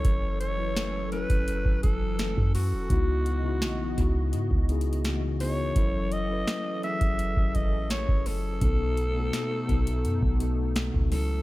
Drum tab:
HH |x-----x-----x-----x--x--x-----x-----x-----o-----|x-----x-----x-----x-----x-----x-x-x-x-----o-----|x-----x-----x-----x--x--x-----x-----x-----o-----|x-----x-----x-----x--x--x-----x-----x-----o-----|
SD |------------o-----------------------o-----------|------------o-----------------------o-----------|------------o-----------------------o-----------|------------o-----------------------o-----------|
BD |o--------------------o-----o--o--------o--------|o-----------------o--------o--------------------|o--------------------o-----o--o--------o--------|o-----------------o--------o-----------o--------|